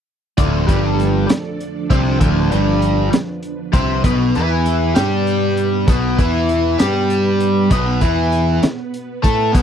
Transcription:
0.38 0.66 D1 medium
0.38 0.67 D2 loud
0.38 0.67 D3 loud
0.38 4.01 F3 medium
0.38 4.01 D4 medium
0.38 2.19 A4 medium
0.38 4.01 D5 medium
0.38 kick loud
0.38 closed hi-hat medium
0.68 1.26 G1 medium
0.68 1.28 G2 medium
0.68 1.28 G3 medium
0.68 kick medium
0.68 closed hi-hat medium
0.99 closed hi-hat medium
1.28 muted overdriven electric guitar stroke medium
1.28 muted picked electric bass stroke soft
1.28 snare loud
1.28 closed hi-hat loud
1.60 closed hi-hat medium
1.90 2.19 C2 medium
1.90 2.19 C3 medium
1.90 2.20 C4 medium
1.90 kick loud
1.90 closed hi-hat medium
2.19 2.49 D1 medium
2.19 2.49 D2 loud
2.19 2.50 D3 medium
2.19 9.50 B4 medium
2.19 kick loud
2.19 closed hi-hat medium
2.51 3.09 G1 medium
2.51 3.11 G2 medium
2.51 3.11 G3 medium
2.51 closed hi-hat medium
2.82 closed hi-hat medium
3.12 muted overdriven electric guitar stroke medium
3.12 muted picked electric bass stroke soft
3.12 snare loud
3.12 closed hi-hat medium
3.43 closed hi-hat medium
3.72 4.02 C2 medium
3.72 4.02 C3 medium
3.72 4.03 C4 medium
3.72 kick loud
3.72 closed hi-hat medium
4.04 4.32 B1 medium
4.04 4.33 B2 loud
4.04 9.62 B3 medium
4.04 4.34 B3 loud
4.04 kick loud
4.04 closed hi-hat medium
4.35 4.93 E2 medium
4.35 4.95 E3 medium
4.35 4.95 E4 medium
4.35 closed hi-hat medium
4.66 closed hi-hat medium
4.94 5.84 G2 medium
4.94 5.86 G3 medium
4.94 5.86 G4 medium
4.94 snare loud
4.94 closed hi-hat medium
5.27 closed hi-hat medium
5.57 closed hi-hat medium
5.87 6.16 B1 medium
5.87 6.17 B2 medium
5.87 6.17 B3 loud
5.87 kick loud
5.87 closed hi-hat medium
6.17 6.76 E2 medium
6.17 6.78 E3 medium
6.17 6.79 E4 medium
6.17 kick medium
6.17 closed hi-hat medium
6.49 closed hi-hat medium
6.78 7.68 G2 medium
6.78 7.70 G3 medium
6.78 7.70 G4 medium
6.78 snare loud
6.78 closed hi-hat loud
7.10 closed hi-hat medium
7.40 closed hi-hat medium
7.70 7.99 B1 medium
7.70 8.00 B2 medium
7.70 8.01 B3 loud
7.70 kick loud
7.70 closed hi-hat medium
8.01 8.59 E2 medium
8.01 8.62 E3 medium
8.01 8.62 E4 medium
8.01 kick medium
8.01 closed hi-hat medium
8.32 closed hi-hat medium
8.62 muted overdriven electric guitar stroke soft
8.62 muted picked electric bass stroke soft
8.62 snare loud
8.62 closed hi-hat medium
8.94 closed hi-hat medium
9.23 9.52 A2 medium
9.23 9.52 A3 medium
9.23 9.53 A4 medium
9.23 kick medium
9.23 closed hi-hat medium
9.52 9.62 B1 medium
9.52 9.62 B2 medium
9.52 9.62 B3 medium
9.52 kick loud
9.52 closed hi-hat medium

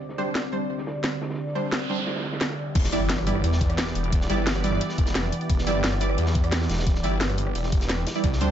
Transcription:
0.00 2.71 D3 medium
0.00 0.16 G3 medium
0.00 2.71 C4 medium
0.00 0.16 D4 medium
0.00 2.71 G4 medium
0.00 0.16 C5 medium
0.00 2.71 D5 medium
0.00 closed hi-hat medium
0.09 snare medium
0.18 0.29 G3 loud
0.18 0.29 D4 medium
0.18 0.29 C5 loud
0.18 closed hi-hat medium
0.35 snare loud
0.35 closed hi-hat medium
0.52 0.63 G3 medium
0.52 0.63 D4 medium
0.52 0.63 C5 medium
0.52 closed hi-hat medium
0.70 closed hi-hat medium
0.78 snare soft
0.86 snare loud
0.86 closed hi-hat medium
1.04 snare loud
1.21 snare medium
1.21 closed hi-hat medium
1.30 snare medium
1.30 closed hi-hat medium
1.33 snare medium
1.33 closed hi-hat medium
1.38 closed hi-hat medium
1.38 noise sweep medium
1.47 snare soft
1.55 1.66 G3 medium
1.55 1.66 D4 medium
1.55 1.66 C5 medium
1.55 closed hi-hat medium
1.72 snare loud
1.72 closed hi-hat medium
1.81 closed hi-hat soft
1.89 2.74 G3 medium
1.89 2.74 D4 medium
1.89 2.74 C5 medium
1.89 closed hi-hat medium
1.99 snare soft
2.06 snare loud
2.06 closed hi-hat medium
2.16 snare medium
2.16 closed hi-hat medium
2.20 snare medium
2.20 closed hi-hat medium
2.23 snare medium
2.23 closed hi-hat medium
2.32 snare loud
2.32 closed hi-hat medium
2.41 snare loud
2.41 closed hi-hat medium
2.50 snare loud
2.50 closed hi-hat medium
2.59 closed hi-hat medium
2.67 closed hi-hat soft
2.75 2.91 E1 loud
2.75 8.20 E3 medium
2.75 8.20 B3 medium
2.75 8.51 G4 medium
2.75 8.20 D5 medium
2.75 kick loud
2.75 closed hi-hat loud
2.75 closed hi-hat medium
2.75 crash loud
2.75 impact medium
2.84 snare medium
2.92 3.42 G1 loud
2.92 3.03 G3 loud
2.92 3.03 E4 medium
2.92 3.03 D5 loud
2.92 closed hi-hat medium
3.09 snare loud
3.09 closed hi-hat medium
3.09 closed hi-hat loud
3.18 cross-stick medium
3.18 closed hi-hat soft
3.27 3.38 G3 medium
3.27 3.38 E4 medium
3.27 3.38 D5 medium
3.27 closed hi-hat medium
3.27 open hi-hat medium
3.35 cross-stick soft
3.44 3.94 E2 loud
3.44 closed hi-hat medium
3.52 snare medium
3.61 kick loud
3.61 closed hi-hat medium
3.70 cross-stick soft
3.70 closed hi-hat soft
3.78 snare loud
3.78 closed hi-hat medium
3.87 snare soft
3.95 4.28 E1 loud
3.95 closed hi-hat medium
3.95 open hi-hat medium
4.04 closed hi-hat soft
4.12 kick loud
4.12 closed hi-hat loud
4.12 closed hi-hat medium
4.21 snare soft
4.30 4.80 G1 medium
4.30 4.41 G3 medium
4.30 4.41 E4 medium
4.30 4.41 D5 medium
4.30 closed hi-hat medium
4.47 snare loud
4.47 closed hi-hat loud
4.55 cross-stick medium
4.55 closed hi-hat soft
4.64 5.65 G3 medium
4.64 5.65 E4 medium
4.64 5.65 D5 medium
4.64 closed hi-hat medium
4.64 open hi-hat medium
4.73 cross-stick soft
4.81 closed hi-hat loud
4.81 closed hi-hat medium
4.89 snare soft
4.98 5.31 F1 loud
4.98 kick loud
4.98 closed hi-hat medium
5.06 snare medium
5.06 closed hi-hat soft
5.14 snare loud
5.14 closed hi-hat medium
5.32 closed hi-hat medium
5.32 open hi-hat medium
5.41 closed hi-hat soft
5.50 5.65 E1 loud
5.50 kick loud
5.50 closed hi-hat medium
5.58 snare medium
5.67 6.17 G1 loud
5.67 5.78 G3 loud
5.67 5.78 E4 loud
5.67 5.78 D5 loud
5.67 closed hi-hat medium
5.84 snare loud
5.84 closed hi-hat medium
5.92 cross-stick medium
5.92 closed hi-hat soft
6.00 6.12 G3 medium
6.00 6.12 E4 medium
6.00 6.12 D5 medium
6.00 closed hi-hat medium
6.00 open hi-hat medium
6.10 cross-stick soft
6.18 6.68 E2 loud
6.18 closed hi-hat medium
6.26 snare soft
6.34 kick loud
6.34 closed hi-hat medium
6.44 cross-stick soft
6.44 closed hi-hat soft
6.52 snare loud
6.52 closed hi-hat medium
6.61 snare medium
6.69 7.02 E1 loud
6.69 snare medium
6.69 closed hi-hat medium
6.69 open hi-hat medium
6.73 snare medium
6.73 closed hi-hat medium
6.78 snare loud
6.78 closed hi-hat soft
6.78 closed hi-hat medium
6.87 kick loud
6.87 closed hi-hat medium
6.95 snare soft
7.04 7.54 G1 loud
7.04 7.15 G3 medium
7.04 7.15 E4 medium
7.04 7.15 D5 loud
7.04 closed hi-hat medium
7.20 snare loud
7.20 closed hi-hat medium
7.30 cross-stick medium
7.30 closed hi-hat soft
7.38 closed hi-hat medium
7.38 open hi-hat medium
7.47 cross-stick soft
7.55 8.05 E1 loud
7.55 closed hi-hat loud
7.55 closed hi-hat medium
7.63 snare soft
7.72 kick loud
7.72 closed hi-hat medium
7.81 snare medium
7.81 closed hi-hat soft
7.89 snare medium
7.89 snare loud
7.89 closed hi-hat medium
8.07 snare loud
8.07 closed hi-hat medium
8.07 open hi-hat medium
8.14 8.22 G3 medium
8.14 8.22 E4 medium
8.14 8.22 D5 medium
8.14 closed hi-hat soft
8.24 8.40 C2 medium
8.24 8.51 D3 medium
8.24 8.51 C4 medium
8.24 8.51 D5 medium
8.24 kick loud
8.24 closed hi-hat medium
8.33 snare medium
8.40 8.51 D2 loud
8.40 8.51 G3 loud
8.40 8.51 D4 medium
8.40 8.51 C5 loud
8.40 closed hi-hat medium

